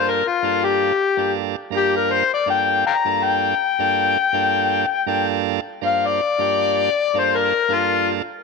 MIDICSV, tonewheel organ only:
0, 0, Header, 1, 2, 480
1, 0, Start_track
1, 0, Key_signature, -2, "minor"
1, 0, Tempo, 748130
1, 864, Time_signature, 4, 2, 24, 8
1, 5411, End_track
2, 0, Start_track
2, 0, Title_t, "Tonewheel organ"
2, 0, Program_c, 0, 16
2, 0, Note_on_c, 0, 43, 68
2, 0, Note_on_c, 0, 58, 62
2, 0, Note_on_c, 0, 62, 64
2, 0, Note_on_c, 0, 65, 60
2, 0, Note_on_c, 0, 69, 73
2, 147, Note_off_c, 0, 43, 0
2, 150, Note_off_c, 0, 58, 0
2, 151, Note_off_c, 0, 65, 0
2, 152, Note_off_c, 0, 62, 0
2, 154, Note_off_c, 0, 69, 0
2, 272, Note_on_c, 0, 43, 66
2, 277, Note_on_c, 0, 58, 69
2, 278, Note_on_c, 0, 62, 63
2, 286, Note_on_c, 0, 65, 63
2, 288, Note_on_c, 0, 69, 80
2, 591, Note_off_c, 0, 43, 0
2, 593, Note_off_c, 0, 58, 0
2, 594, Note_off_c, 0, 62, 0
2, 598, Note_off_c, 0, 65, 0
2, 599, Note_off_c, 0, 69, 0
2, 750, Note_on_c, 0, 58, 62
2, 751, Note_on_c, 0, 43, 64
2, 758, Note_on_c, 0, 62, 64
2, 761, Note_on_c, 0, 65, 61
2, 761, Note_on_c, 0, 69, 71
2, 997, Note_off_c, 0, 43, 0
2, 997, Note_off_c, 0, 58, 0
2, 1000, Note_off_c, 0, 62, 0
2, 1002, Note_off_c, 0, 65, 0
2, 1002, Note_off_c, 0, 69, 0
2, 1092, Note_on_c, 0, 43, 77
2, 1097, Note_on_c, 0, 58, 69
2, 1104, Note_on_c, 0, 62, 69
2, 1105, Note_on_c, 0, 65, 67
2, 1108, Note_on_c, 0, 70, 88
2, 1432, Note_off_c, 0, 43, 0
2, 1434, Note_off_c, 0, 58, 0
2, 1438, Note_off_c, 0, 62, 0
2, 1439, Note_off_c, 0, 65, 0
2, 1440, Note_off_c, 0, 70, 0
2, 1578, Note_on_c, 0, 43, 66
2, 1584, Note_on_c, 0, 58, 64
2, 1585, Note_on_c, 0, 62, 61
2, 1589, Note_on_c, 0, 65, 61
2, 1590, Note_on_c, 0, 69, 72
2, 1826, Note_off_c, 0, 43, 0
2, 1828, Note_off_c, 0, 58, 0
2, 1829, Note_off_c, 0, 62, 0
2, 1831, Note_off_c, 0, 65, 0
2, 1831, Note_off_c, 0, 69, 0
2, 1954, Note_on_c, 0, 43, 74
2, 1960, Note_on_c, 0, 58, 66
2, 1961, Note_on_c, 0, 62, 64
2, 1964, Note_on_c, 0, 65, 70
2, 1965, Note_on_c, 0, 69, 80
2, 2272, Note_off_c, 0, 43, 0
2, 2275, Note_off_c, 0, 58, 0
2, 2275, Note_off_c, 0, 62, 0
2, 2277, Note_off_c, 0, 65, 0
2, 2278, Note_off_c, 0, 69, 0
2, 2430, Note_on_c, 0, 43, 78
2, 2432, Note_on_c, 0, 58, 74
2, 2437, Note_on_c, 0, 62, 72
2, 2441, Note_on_c, 0, 65, 78
2, 2442, Note_on_c, 0, 69, 88
2, 2677, Note_off_c, 0, 43, 0
2, 2678, Note_off_c, 0, 58, 0
2, 2680, Note_off_c, 0, 62, 0
2, 2682, Note_off_c, 0, 65, 0
2, 2682, Note_off_c, 0, 69, 0
2, 2776, Note_on_c, 0, 43, 86
2, 2778, Note_on_c, 0, 58, 78
2, 2784, Note_on_c, 0, 62, 76
2, 2786, Note_on_c, 0, 65, 79
2, 2790, Note_on_c, 0, 69, 94
2, 3114, Note_off_c, 0, 43, 0
2, 3115, Note_off_c, 0, 58, 0
2, 3118, Note_off_c, 0, 62, 0
2, 3119, Note_off_c, 0, 65, 0
2, 3121, Note_off_c, 0, 69, 0
2, 3249, Note_on_c, 0, 43, 94
2, 3252, Note_on_c, 0, 58, 90
2, 3255, Note_on_c, 0, 62, 86
2, 3261, Note_on_c, 0, 65, 87
2, 3262, Note_on_c, 0, 69, 104
2, 3590, Note_off_c, 0, 43, 0
2, 3592, Note_off_c, 0, 58, 0
2, 3594, Note_off_c, 0, 62, 0
2, 3596, Note_off_c, 0, 65, 0
2, 3597, Note_off_c, 0, 69, 0
2, 3732, Note_on_c, 0, 43, 67
2, 3732, Note_on_c, 0, 58, 65
2, 3734, Note_on_c, 0, 62, 65
2, 3740, Note_on_c, 0, 65, 60
2, 3742, Note_on_c, 0, 72, 74
2, 3982, Note_off_c, 0, 58, 0
2, 3983, Note_off_c, 0, 43, 0
2, 3984, Note_off_c, 0, 62, 0
2, 3987, Note_off_c, 0, 65, 0
2, 3988, Note_off_c, 0, 72, 0
2, 4096, Note_on_c, 0, 43, 73
2, 4100, Note_on_c, 0, 58, 66
2, 4101, Note_on_c, 0, 62, 64
2, 4109, Note_on_c, 0, 65, 65
2, 4113, Note_on_c, 0, 67, 82
2, 4423, Note_off_c, 0, 43, 0
2, 4425, Note_off_c, 0, 58, 0
2, 4426, Note_off_c, 0, 62, 0
2, 4430, Note_off_c, 0, 65, 0
2, 4432, Note_off_c, 0, 67, 0
2, 4579, Note_on_c, 0, 43, 70
2, 4583, Note_on_c, 0, 58, 64
2, 4584, Note_on_c, 0, 62, 63
2, 4591, Note_on_c, 0, 65, 64
2, 4595, Note_on_c, 0, 69, 77
2, 4832, Note_off_c, 0, 43, 0
2, 4834, Note_off_c, 0, 58, 0
2, 4834, Note_off_c, 0, 62, 0
2, 4838, Note_off_c, 0, 65, 0
2, 4840, Note_off_c, 0, 69, 0
2, 4930, Note_on_c, 0, 43, 79
2, 4933, Note_on_c, 0, 58, 70
2, 4936, Note_on_c, 0, 62, 68
2, 4939, Note_on_c, 0, 65, 68
2, 4944, Note_on_c, 0, 69, 86
2, 5272, Note_off_c, 0, 43, 0
2, 5273, Note_off_c, 0, 58, 0
2, 5275, Note_off_c, 0, 62, 0
2, 5276, Note_off_c, 0, 65, 0
2, 5278, Note_off_c, 0, 69, 0
2, 5411, End_track
0, 0, End_of_file